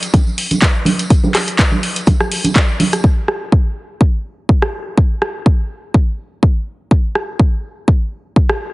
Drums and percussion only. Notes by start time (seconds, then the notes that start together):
0.03 closed hi-hat, tambourine
0.14 kick, closed hi-hat, tambourine, high conga
0.27 tambourine
0.38 open hi-hat
0.51 closed hi-hat, tambourine, high conga
0.62 kick, clap, closed hi-hat
0.75 tambourine
0.85 open hi-hat, high conga
0.99 closed hi-hat, tambourine
1.10 kick, closed hi-hat, tambourine
1.23 tambourine, high conga
1.35 cross-stick, clap, open hi-hat
1.48 closed hi-hat, tambourine
1.59 kick, clap, closed hi-hat, tambourine
1.71 tambourine, high conga
1.83 open hi-hat
1.96 closed hi-hat, tambourine
2.07 kick, closed hi-hat, tambourine, high conga
2.20 cross-stick, tambourine
2.32 open hi-hat
2.44 closed hi-hat, tambourine, high conga
2.56 kick, clap, closed hi-hat
2.68 tambourine
2.80 open hi-hat, high conga
2.93 cross-stick, closed hi-hat, tambourine
3.04 kick
3.28 cross-stick
3.52 kick
4.01 kick
4.49 kick
4.62 cross-stick
4.98 kick
5.22 cross-stick
5.46 kick
5.94 kick
6.43 kick
6.91 kick
7.15 cross-stick
7.39 kick
7.88 kick
8.36 kick
8.49 cross-stick